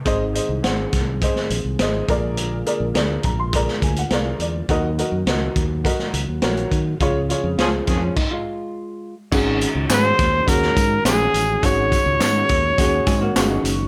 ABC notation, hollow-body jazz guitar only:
X:1
M:4/4
L:1/16
Q:1/4=104
K:Abmix
V:1 name="Hollow-body jazz guitar"
z16 | z16 | z16 | z6 [E,C] [F,D] E [A,F]6 z |
z16 | z8 z2 [CA] [B,G] [A,F] [G,E]3 |]